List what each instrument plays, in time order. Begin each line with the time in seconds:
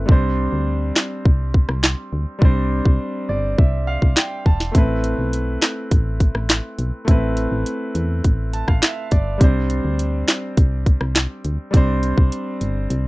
Already playing: grand piano C4
0.06 fm bass C2, grand piano G3 C4, kick
0.10 grand piano D4 C5
0.53 fm bass D2
0.96 snare, clap
1.25 fm bass C2, kick
1.54 kick
1.69 fm bass C2, cross-stick
1.84 snare, clap
2.13 fm bass D2
2.39 fm bass C2, grand piano G3 C4, kick
2.43 grand piano D4 C5
2.86 fm bass C2, kick
3.29 fm bass G1, grand piano D5
3.58 fm bass C2, grand piano E5, kick
3.87 grand piano F5
4.02 fm bass C2, kick
4.17 grand piano G5, snare, clap
4.46 fm bass E1, grand piano A5, kick
4.60 snare
4.72 fm bass A1, grand piano A3 C4, kick, closed hi-hat
4.76 grand piano E4 B4
5.04 closed hi-hat
5.18 fm bass B1
5.33 closed hi-hat
5.62 snare, clap, closed hi-hat
5.91 fm bass A1, kick, closed hi-hat
6.20 kick, closed hi-hat
6.35 fm bass A1, cross-stick
6.49 snare, clap, closed hi-hat
6.79 fm bass B1, closed hi-hat
7.05 fm bass A1, grand piano A3 C4, kick, closed hi-hat
7.09 grand piano E4 B4
7.37 closed hi-hat
7.51 fm bass A1
7.66 closed hi-hat
7.95 fm bass E2, closed hi-hat
8.24 fm bass A1, kick, closed hi-hat
8.53 grand piano A5, closed hi-hat
8.68 fm bass A1, grand piano F5, kick, cross-stick
8.82 grand piano E5, snare, clap, closed hi-hat
9.11 fm bass G1, grand piano D5, kick, closed hi-hat
9.38 fm bass C2, grand piano G3 C4, kick, closed hi-hat
9.42 grand piano D4 C5
9.70 closed hi-hat
9.84 fm bass D2
9.99 closed hi-hat
10.28 snare, clap, closed hi-hat
10.57 fm bass C2, kick, closed hi-hat
10.86 kick, closed hi-hat
11.01 fm bass C2, cross-stick
11.15 snare, clap, closed hi-hat
11.45 fm bass D2, closed hi-hat
11.71 fm bass C2, grand piano G3 C4, kick, closed hi-hat
11.75 grand piano D4 C5
12.03 closed hi-hat
12.18 fm bass C2, kick
12.32 closed hi-hat
12.61 fm bass G1, closed hi-hat
12.90 fm bass C2, closed hi-hat